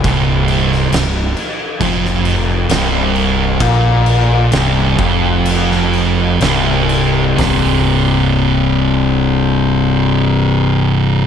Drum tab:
CC |x-x-x-x-x-x-x-x-|x-x-x-x-x-x-x-x-|----------------|
HH |----------------|----------------|o---------------|
SD |---oo----o--o---|----o----o--o---|o---------------|
FT |----------------|----------------|o---------------|
BD |o-------o-------|o-----o---------|----------------|